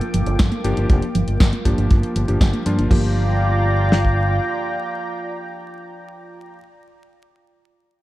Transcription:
Already playing: electric grand piano F3 A#3 D4 A4, analog synth pad A#3 F4 G5 D6
0.01 synth arpeggio sound A#3, closed hi-hat
0.14 fingered electric bass G1, synth arpeggio sound F3, closed hi-hat
0.26 fingered electric bass G1, synth arpeggio sound D4, closed hi-hat
0.39 fingered electric bass G1, synth arpeggio sound F3, kick, snare, closed hi-hat
0.52 synth arpeggio sound A#3, closed hi-hat
0.64 fingered electric bass G1, electric grand piano F3 A#3 D4 G4, synth arpeggio sound F3, closed hi-hat
0.77 fingered electric bass G1, synth arpeggio sound D4, closed hi-hat
0.89 fingered electric bass F1, synth arpeggio sound F3, electric grand piano F3 A#3 D4 G4, kick, closed hi-hat
1.02 synth arpeggio sound A#3, closed hi-hat
1.15 fingered electric bass G1, synth arpeggio sound F3, closed hi-hat
1.27 fingered electric bass G1, synth arpeggio sound D4, closed hi-hat
1.40 fingered electric bass G1, synth arpeggio sound F3, kick, snare, closed hi-hat
1.53 synth arpeggio sound A#3, closed hi-hat
1.65 fingered electric bass G1, electric grand piano F3 A#3 D4 G4, synth arpeggio sound F3, kick, closed hi-hat
1.78 fingered electric bass G1, synth arpeggio sound D4, closed hi-hat
1.90 fingered electric bass G1, synth arpeggio sound A#3, kick, closed hi-hat
2.03 synth arpeggio sound A#3, closed hi-hat
2.16 fingered electric bass G1, synth arpeggio sound F3, closed hi-hat
2.28 fingered electric bass G1, electric grand piano F3 A#3 D4 G4, synth arpeggio sound D4, closed hi-hat
2.41 fingered electric bass G1, synth arpeggio sound F3, kick, snare, closed hi-hat
2.53 synth arpeggio sound A#3, closed hi-hat
2.66 fingered electric bass G2, electric grand piano F3 A#3 D4 F4, synth arpeggio sound F3, closed hi-hat
2.79 fingered electric bass G1, synth arpeggio sound D4, closed hi-hat
2.91 fingered electric bass G1, electric grand piano F3 A#3 D4 G4, synth arpeggio sound F3, analog synth pad F4 D5 G5 A#5, kick, crash
3.92 snare
4.05 kick

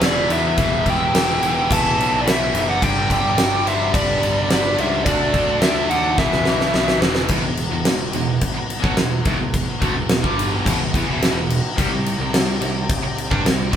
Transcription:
Already playing: distorted electric guitar E2 B2 E3, tonewheel organ E3 B3 F#4
0.00 picked electric bass E1, overdriven electric guitar E2 B2 E3, lead electric guitar B4, snare, crash
0.05 lead electric guitar D5
0.28 overdriven electric guitar E2 B2 E3, picked electric bass E2, lead electric guitar B4, crash
0.33 lead electric guitar E5
0.56 picked electric bass E1, overdriven electric guitar E2 B2 E3, tonewheel organ G4, kick, crash
0.84 picked electric bass E1, overdriven electric guitar E2 B2 E3, kick, crash
0.89 lead electric guitar E5 G5
1.12 picked electric bass E1, overdriven electric guitar E2 B2 E3, snare, crash
1.41 picked electric bass E1, overdriven electric guitar E2 B2 E3, crash
1.69 picked electric bass E1, overdriven electric guitar E2 B2 E3, lead electric guitar E5, kick, crash
1.73 lead electric guitar A5
1.98 picked electric bass B1, overdriven electric guitar E2 B2 E3, crash
2.21 lead electric guitar B4 D5
2.25 picked electric bass B1, overdriven electric guitar E2 B2 E3, lead electric guitar B4, snare, crash
2.30 lead electric guitar E5
2.52 picked electric bass F#1, overdriven electric guitar E2 B2 E3, crash
2.69 lead electric guitar D5 F#5
2.80 picked electric bass G1, overdriven electric guitar G2 D3 G3, tonewheel organ G3 D4 A4, lead electric guitar D5 G5, kick, crash
3.10 overdriven electric guitar G2 D3 G3, lead electric guitar D5 G5, kick, crash
3.37 picked electric bass G1, overdriven electric guitar G2 D3 G3, snare, crash
3.64 overdriven electric guitar G2 D3 G3, lead electric guitar C5 E5, crash
3.92 picked electric bass G1, overdriven electric guitar G2 D3 G3, lead electric guitar B4 D5, kick, crash
4.20 picked electric bass G1, overdriven electric guitar G2 D3 G3, crash
4.49 picked electric bass G1, overdriven electric guitar G2 D3 G3, lead electric guitar B4 D5, snare, crash
4.77 picked electric bass C#2, overdriven electric guitar G2 D3 G3, lead electric guitar C5 E5, crash
5.04 picked electric bass D2, overdriven electric guitar D3 A3 D4, tonewheel organ A4 E5, lead electric guitar A4 D5, kick, crash
5.33 picked electric bass D2, overdriven electric guitar D3 A3 D4, kick, crash
5.61 picked electric bass D2, overdriven electric guitar D3 A3 D4, lead electric guitar A4 E5, snare, crash
5.89 picked electric bass D#2, overdriven electric guitar D3 A3 D4, lead electric guitar D5 F#5, crash
6.17 picked electric bass E1, overdriven electric guitar E2 B2 E3, tonewheel organ E3 B3 F#4, lead electric guitar B4 E5, kick, snare
6.32 snare
6.44 picked electric bass B1, overdriven electric guitar E2 B2 E3, snare
6.60 snare
6.72 picked electric bass B1, overdriven electric guitar E2 B2 E3, snare
6.88 snare
7.02 picked electric bass E1, overdriven electric guitar E2 B2 E3, snare
7.15 snare
7.28 picked electric bass E1, overdriven electric guitar E2 B2, tonewheel organ E3 B3 F#4, kick, crash
7.43 picked electric bass E1, overdriven electric guitar E2 B2
7.57 crash
7.71 picked electric bass E1, overdriven electric guitar E2 B2
7.85 picked electric bass E1, overdriven electric guitar E2 B2, snare, crash
8.12 picked electric bass E1, overdriven electric guitar E2 B2, crash
8.41 kick, crash
8.54 muted overdriven electric guitar stroke, muted picked electric bass stroke, muted distorted electric guitar stroke
8.70 crash
8.80 picked electric bass B1, overdriven electric guitar B2 F#3, kick
8.85 distorted electric guitar B2
8.95 picked electric bass E1, overdriven electric guitar E2 B2, snare, crash
8.99 distorted electric guitar B2
9.24 picked electric bass E1, overdriven electric guitar E2 B2, kick, crash
9.39 picked electric bass E1, overdriven electric guitar E2 B2
9.54 kick, crash
9.80 picked electric bass D2, overdriven electric guitar D3 A3, kick, crash
9.95 picked electric bass E1, overdriven electric guitar E2 B2
10.08 picked electric bass E1, overdriven electric guitar E2 B2, snare, crash
10.22 picked electric bass G1, overdriven electric guitar G2 D3 G3, kick
10.39 crash
10.65 picked electric bass E1, overdriven electric guitar E2 B2, kick, crash
10.79 picked electric bass E1, overdriven electric guitar E2 B2
10.94 picked electric bass E2, overdriven electric guitar E3 B3, kick, crash
11.06 picked electric bass E1, overdriven electric guitar E2
11.11 overdriven electric guitar B2 E3
11.22 snare, crash
11.33 picked electric bass E1
11.37 overdriven electric guitar E2 B2
11.50 crash
11.76 picked electric bass C2, overdriven electric guitar C3 G3, tonewheel organ C4 G4 D5, kick, crash
11.89 picked electric bass C2, overdriven electric guitar C3 G3
12.06 crash
12.19 picked electric bass C2, overdriven electric guitar C3 G3
12.33 picked electric bass C2, overdriven electric guitar C3 G3, snare, crash
12.61 picked electric bass C2, overdriven electric guitar C3 G3, crash
12.90 kick, crash
13.04 muted distorted electric guitar stroke, muted overdriven electric guitar stroke, muted picked electric bass stroke
13.18 crash
13.31 picked electric bass G2, overdriven electric guitar G3 D4, kick
13.45 picked electric bass C2, overdriven electric guitar C3 G3, snare, crash
13.71 picked electric bass C2, distorted electric guitar C3 G3, kick, crash

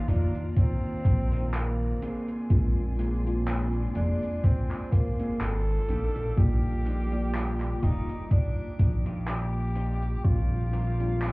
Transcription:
Already playing: tine electric piano D#3 A#3 D4 D#4 F4 D5, tenor saxophone F4, string section F4 D5 A#5
0.07 analog synth bass F1, clean electric guitar A#3 D4 D#4 F4, tenor saxophone D4, kick, closed hi-hat
0.35 closed hi-hat
0.51 tenor saxophone D4
0.56 tenor saxophone C4, kick, closed hi-hat
1.04 analog synth bass A#1, muted clean electric guitar stroke, kick, closed hi-hat
1.31 clean electric guitar A#3 D4 D#4 F4, closed hi-hat
1.54 tenor saxophone A#3, clap, closed hi-hat
2.01 clean electric guitar A#3 C4 D4 G#4, string section D5 G#5 C6, closed hi-hat
2.28 closed hi-hat
2.50 analog synth bass A#1, tine electric piano G#3 C4 D4 F4, kick, closed hi-hat
2.98 clean electric guitar A#3 C4 D4 G#4, closed hi-hat
3.24 tine electric piano A#3 C4 D4 F4, closed hi-hat
3.47 clap, closed hi-hat
3.95 analog synth bass F1, clean electric guitar A#3 C4 D4 G#4, tenor saxophone D4, closed hi-hat
4.22 closed hi-hat
4.44 tenor saxophone C4, kick, closed hi-hat
4.71 clap
4.92 tenor saxophone A#3, muted clean electric guitar stroke, kick, closed hi-hat
5.18 analog synth bass G#1, clean electric guitar A#3 C4 D4 G#4, closed hi-hat
5.41 analog synth bass G#1, tenor saxophone A4, clap, closed hi-hat
5.88 analog synth bass A#1, clean electric guitar D4 D#4 F4 G4, string section G4 F5 D6, closed hi-hat
6.16 analog synth bass A#1, closed hi-hat
6.36 analog synth bass A#1, tine electric piano G3 A#3 F4 D5, tenor saxophone G4, kick, closed hi-hat
6.85 clean electric guitar D4 D#4 F4 G4, closed hi-hat
7.11 tine electric piano G3 A#3 F4 D5, closed hi-hat
7.34 clap, closed hi-hat
7.60 clap
7.82 analog synth bass F1, clean electric guitar D4 D#4 F4 G4, tenor saxophone D#4, kick, closed hi-hat
8.09 closed hi-hat
8.31 tenor saxophone D4, kick, closed hi-hat
8.79 analog synth bass A#1, muted clean electric guitar stroke, kick, closed hi-hat
9.05 clean electric guitar D4 D#4 F4 G4, closed hi-hat
9.28 tenor saxophone G4, clap, closed hi-hat
9.75 clean electric guitar D4 D#4 F4 G4, closed hi-hat
10.02 closed hi-hat
10.24 analog synth bass A#1, tine electric piano G3 C4 D4 F4, tenor saxophone F4, string section A#4 G5, kick, closed hi-hat
10.73 clean electric guitar D4 F4 G4 A#4, closed hi-hat
10.98 tine electric piano G3 C4 D4 F4, closed hi-hat
11.22 clap, closed hi-hat

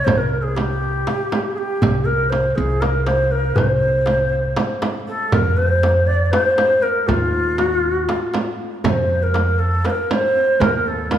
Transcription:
0.04 upright bass C2, ney C5, darbuka dum, frame drum
0.17 ney A#4
0.42 ney G#4
0.55 ney G4, darbuka tek, frame drum
1.07 darbuka tek, frame drum
1.32 darbuka tek, frame drum
1.55 ney G4 G#4
1.69 darbuka ka
1.82 upright bass C2, darbuka dum, frame drum
2.05 ney A#4
2.29 ney C5, darbuka tek, frame drum
2.55 upright bass C2, ney G#4
2.81 ney A#4, darbuka tek, frame drum
3.05 ney C5, darbuka tek, frame drum
3.31 ney A#4
3.45 darbuka ka
3.55 upright bass C2, ney C5, darbuka dum, frame drum
4.06 darbuka tek, frame drum
4.56 darbuka tek, frame drum
4.82 darbuka tek, frame drum
5.07 ney A4, darbuka ka
5.21 darbuka ka
5.32 upright bass F2, ney A#4, darbuka dum, frame drum
5.57 ney C5, darbuka ka
5.83 darbuka tek, frame drum
6.07 ney D5
6.25 ney D5
6.31 ney C5, darbuka tek, frame drum
6.58 darbuka tek, frame drum
6.82 ney A#4
7.07 upright bass D#2, ney F4, darbuka dum, frame drum
7.34 darbuka ka
7.58 ney F#4, darbuka tek, frame drum
7.75 ney F4
7.92 ney F#4
8.05 ney F4, frame drum
8.09 darbuka tek
8.34 darbuka tek, frame drum
8.84 upright bass F2, ney C#5, darbuka dum, frame drum
8.89 ney C5
9.10 darbuka ka
9.23 ney A#4
9.34 darbuka tek, frame drum
9.59 ney A4
9.85 ney C5, darbuka tek, frame drum
9.89 ney A#4
10.10 ney C5 C#5, frame drum
10.60 upright bass D#2, ney A#4, darbuka dum, frame drum
10.86 ney A4, darbuka ka
11.11 ney A#4, darbuka tek, frame drum

